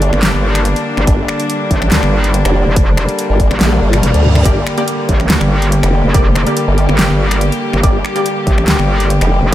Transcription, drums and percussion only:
0.02 closed hi-hat
0.13 finger snap
0.23 snare, clap, closed hi-hat
0.55 finger snap, closed hi-hat
0.65 closed hi-hat
0.76 closed hi-hat
0.97 finger snap
1.07 kick, closed hi-hat
1.28 finger snap
1.40 closed hi-hat
1.50 closed hi-hat
1.71 kick, closed hi-hat
1.82 finger snap
1.92 snare, clap, closed hi-hat
2.03 finger snap
2.24 closed hi-hat
2.34 closed hi-hat
2.45 finger snap, closed hi-hat
2.76 kick, closed hi-hat
2.97 finger snap
3.09 closed hi-hat
3.19 closed hi-hat
3.40 kick, closed hi-hat
3.51 finger snap
3.61 snare, clap, closed hi-hat, high tom
3.72 high tom
3.93 finger snap, closed hi-hat, mid tom
4.03 closed hi-hat, mid tom
4.14 closed hi-hat
4.24 mid tom
4.35 finger snap, mid tom
4.45 kick, closed hi-hat
4.67 finger snap
4.78 closed hi-hat
4.88 closed hi-hat
5.09 kick, closed hi-hat
5.20 finger snap
5.30 snare, clap, closed hi-hat
5.41 finger snap
5.62 closed hi-hat
5.72 closed hi-hat
5.83 finger snap, closed hi-hat
6.14 kick, closed hi-hat
6.36 finger snap
6.47 closed hi-hat
6.57 closed hi-hat
6.78 closed hi-hat
6.89 finger snap
6.99 snare, clap, closed hi-hat
7.31 finger snap, closed hi-hat
7.41 closed hi-hat
7.52 closed hi-hat
7.73 finger snap
7.83 kick, closed hi-hat
8.05 finger snap
8.16 closed hi-hat
8.26 closed hi-hat
8.47 kick, closed hi-hat
8.58 finger snap
8.68 snare, clap, closed hi-hat
8.79 finger snap
9.00 closed hi-hat
9.10 closed hi-hat
9.21 finger snap, closed hi-hat

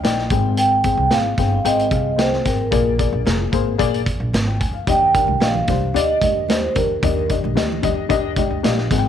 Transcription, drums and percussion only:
0.04 snare, closed hi-hat
0.18 snare
0.30 kick, closed hi-hat
0.57 closed hi-hat
0.84 kick, closed hi-hat
1.11 snare, closed hi-hat
1.38 kick, snare, closed hi-hat
1.65 closed hi-hat
1.79 closed hi-hat
1.91 kick, closed hi-hat
2.19 snare, closed hi-hat
2.33 snare
2.45 kick, snare, closed hi-hat
2.72 kick, closed hi-hat
2.99 kick, closed hi-hat
3.27 snare, closed hi-hat
3.53 kick, closed hi-hat
3.79 kick, closed hi-hat
3.94 closed hi-hat
4.06 kick, closed hi-hat
4.34 snare, closed hi-hat
4.61 kick, closed hi-hat
4.87 kick, closed hi-hat, muted conga
5.14 kick, closed hi-hat, muted conga
5.27 high conga
5.40 snare, closed hi-hat, muted conga
5.55 low conga
5.67 kick, snare, closed hi-hat, muted conga, high conga, low conga
5.96 closed hi-hat
6.22 kick, closed hi-hat, muted conga, high conga
6.49 snare, closed hi-hat, muted conga, high conga
6.75 kick, closed hi-hat, low conga
7.03 kick, closed hi-hat, muted conga
7.29 kick, closed hi-hat, muted conga
7.45 high conga
7.57 snare, closed hi-hat, muted conga
7.72 low conga
7.83 kick, closed hi-hat, muted conga, high conga, low conga
8.10 kick, closed hi-hat, muted conga
8.36 kick, closed hi-hat, high conga
8.64 snare, closed hi-hat, muted conga, high conga
8.78 snare
8.91 kick, snare, closed hi-hat, muted conga, low conga

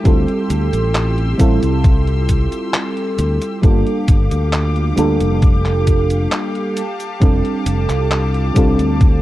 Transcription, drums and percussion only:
0.05 kick, closed hi-hat, cabasa
0.28 closed hi-hat
0.50 closed hi-hat, cabasa
0.73 closed hi-hat, cabasa
0.95 clap, closed hi-hat, cabasa
1.18 closed hi-hat
1.40 kick, closed hi-hat, cabasa
1.63 closed hi-hat, cabasa
1.84 kick, closed hi-hat, cabasa
2.07 closed hi-hat
2.29 kick, closed hi-hat, cabasa
2.52 closed hi-hat, cabasa
2.74 clap, closed hi-hat, cabasa
2.97 closed hi-hat
3.19 closed hi-hat, cabasa
3.42 closed hi-hat, cabasa
3.63 kick, closed hi-hat, cabasa
3.87 closed hi-hat
4.08 kick, closed hi-hat, cabasa
4.31 closed hi-hat, cabasa
4.53 clap, closed hi-hat, cabasa
4.76 closed hi-hat
4.97 closed hi-hat, cabasa
5.21 closed hi-hat, cabasa
5.42 kick, closed hi-hat, cabasa
5.65 clap, closed hi-hat
5.87 kick, closed hi-hat, cabasa
6.10 closed hi-hat, cabasa
6.32 clap, closed hi-hat, cabasa
6.55 closed hi-hat
6.77 closed hi-hat, cabasa
7.00 closed hi-hat, cabasa
7.22 kick, closed hi-hat, cabasa
7.45 closed hi-hat
7.66 closed hi-hat, cabasa
7.89 clap, closed hi-hat, cabasa
8.11 clap, closed hi-hat, cabasa
8.34 closed hi-hat
8.56 kick, closed hi-hat, cabasa
8.79 closed hi-hat, cabasa
9.01 kick, closed hi-hat, cabasa

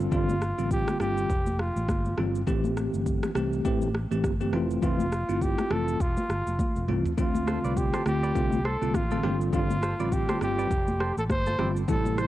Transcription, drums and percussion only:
0.00 shaker
0.11 kick, low conga, shaker
0.29 high conga, shaker
0.42 cross-stick, shaker
0.59 shaker
0.71 kick, shaker
0.88 cross-stick, high conga, shaker
1.00 cross-stick, shaker
1.18 shaker
1.30 kick, shaker
1.46 high conga, shaker
1.59 cross-stick
1.76 high conga, shaker
1.88 kick, cross-stick, high conga, shaker
2.05 high conga, shaker
2.18 cross-stick, low conga
2.35 shaker
2.47 kick, low conga, shaker
2.64 high conga, shaker
2.77 cross-stick, shaker
2.94 shaker
3.06 kick, shaker
3.23 cross-stick, high conga, shaker
3.35 cross-stick, shaker
3.53 shaker
3.65 kick, shaker
3.82 high conga, shaker
3.95 cross-stick
4.12 high conga, shaker
4.24 kick, cross-stick, high conga, shaker
4.41 high conga, shaker
4.53 cross-stick, low conga
4.71 shaker
4.82 kick, low conga, shaker
4.99 high conga, shaker
5.12 cross-stick, shaker
5.29 shaker
5.41 kick, shaker
5.58 cross-stick, high conga, shaker
5.71 cross-stick
5.88 shaker
6.00 kick, shaker
6.17 high conga, shaker
6.30 cross-stick, shaker
6.47 high conga, shaker
6.59 kick, high tom, high conga, shaker
6.76 high conga, shaker
6.88 mid tom, low conga
7.06 floor tom, shaker
7.17 kick, low conga, shaker
7.35 high conga, shaker
7.47 cross-stick, shaker
7.64 shaker
7.77 kick, shaker
7.94 cross-stick, high conga, shaker
8.06 cross-stick, shaker
8.23 shaker
8.35 kick, shaker
8.52 high conga, shaker
8.65 cross-stick
8.82 high conga, shaker
8.94 kick, cross-stick, high conga, shaker
9.11 high conga, shaker
9.23 cross-stick, low conga
9.41 shaker
9.52 kick, low conga, shaker
9.70 high conga, shaker
9.83 cross-stick, shaker
10.00 shaker
10.12 kick, shaker
10.29 cross-stick, high conga, shaker
10.41 cross-stick, shaker
10.59 shaker
10.71 kick, shaker
10.87 high conga, shaker
11.00 cross-stick
11.18 high conga, shaker
11.30 kick, cross-stick, high conga, shaker
11.46 high conga, shaker
11.59 cross-stick, low conga
11.76 shaker
11.88 kick, low conga, shaker
12.05 high conga, shaker
12.18 cross-stick, shaker

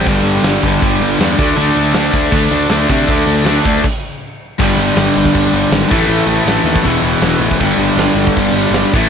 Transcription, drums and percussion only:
0.07 kick, crash
0.27 crash
0.44 snare, crash
0.63 kick, crash
0.82 kick, crash
1.02 crash
1.21 snare, crash
1.39 kick, crash
1.57 crash
1.77 crash
1.94 snare, crash
2.13 kick, crash
2.32 kick, crash
2.51 crash
2.70 snare, crash
2.90 kick, crash
3.08 kick, crash
3.28 crash
3.46 snare, crash
3.65 kick, crash
3.84 kick, crash
4.60 kick, crash
4.78 crash
4.97 snare, crash
5.16 crash
5.25 kick
5.34 kick, crash
5.54 crash
5.73 snare, crash
5.91 kick, crash
6.10 crash
6.30 crash
6.48 snare, crash
6.67 crash
6.76 kick
6.85 kick, crash
7.05 crash
7.22 snare, crash
7.42 crash
7.51 kick
7.61 kick, crash
7.80 crash
7.99 snare, crash
8.18 crash
8.27 kick
8.37 kick, crash
8.56 crash
8.74 snare, crash
8.93 kick, crash

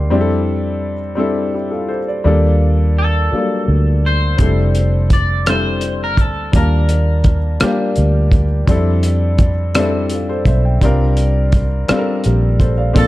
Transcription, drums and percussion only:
4.39 kick, closed hi-hat
4.75 closed hi-hat
5.10 kick, closed hi-hat
5.46 cross-stick, closed hi-hat
5.81 closed hi-hat
6.17 kick, closed hi-hat
6.53 kick, closed hi-hat
6.89 closed hi-hat
7.24 kick, closed hi-hat
7.60 cross-stick, closed hi-hat
7.96 closed hi-hat
8.32 kick, closed hi-hat
8.68 kick, closed hi-hat
9.03 closed hi-hat
9.38 kick, closed hi-hat
9.75 cross-stick, closed hi-hat
10.10 closed hi-hat
10.45 kick, closed hi-hat
10.81 kick, closed hi-hat
11.17 closed hi-hat
11.52 kick, closed hi-hat
11.89 cross-stick, closed hi-hat
12.24 closed hi-hat
12.60 kick, closed hi-hat
12.96 kick, closed hi-hat

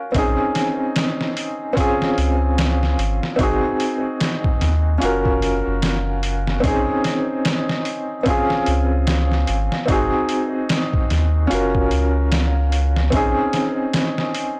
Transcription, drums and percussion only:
0.14 kick, open hi-hat
0.55 snare, open hi-hat
0.96 snare, open hi-hat
1.21 snare
1.37 open hi-hat
1.77 kick, open hi-hat
2.02 snare
2.18 open hi-hat
2.58 snare, open hi-hat
2.83 snare
2.99 open hi-hat
3.23 snare
3.39 kick, open hi-hat
3.80 open hi-hat
4.20 snare, open hi-hat
4.44 kick
4.61 snare, open hi-hat
5.02 open hi-hat
5.25 kick
5.42 open hi-hat
5.82 snare, open hi-hat
6.23 open hi-hat
6.47 snare
6.64 kick, open hi-hat
7.04 snare, open hi-hat
7.45 snare, open hi-hat
7.69 snare
7.85 open hi-hat
8.26 kick, open hi-hat
8.50 snare
8.66 open hi-hat
9.07 snare, open hi-hat
9.32 snare
9.47 open hi-hat
9.72 snare
9.88 kick, open hi-hat
10.29 open hi-hat
10.69 snare, open hi-hat
10.94 kick
11.10 snare, open hi-hat
11.51 open hi-hat
11.75 kick
11.91 open hi-hat
12.32 snare, open hi-hat
12.72 open hi-hat
12.96 snare
13.12 kick, open hi-hat
13.53 snare, open hi-hat
13.93 snare, open hi-hat
14.18 snare
14.34 open hi-hat

